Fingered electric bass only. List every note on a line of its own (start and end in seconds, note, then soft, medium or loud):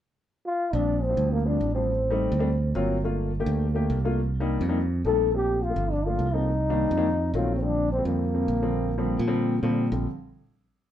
0.73 1.14 A#1 medium
1.17 1.57 D2 medium
1.61 2.27 A1 medium
2.32 2.72 D2 medium
2.75 3.42 G1 medium
3.46 3.87 D2 loud
3.90 4.56 C2 medium
4.61 5.01 F2 medium
5.05 5.71 A#1 medium
5.76 6.16 G1 medium
6.19 6.85 C2 medium
6.91 7.31 F2 medium
7.34 8.00 A#1 medium
8.05 8.45 F2 medium
8.48 9.15 A#1 medium
9.19 9.60 A#2 medium
9.63 9.89 A#2 medium
9.92 10.06 A#1 medium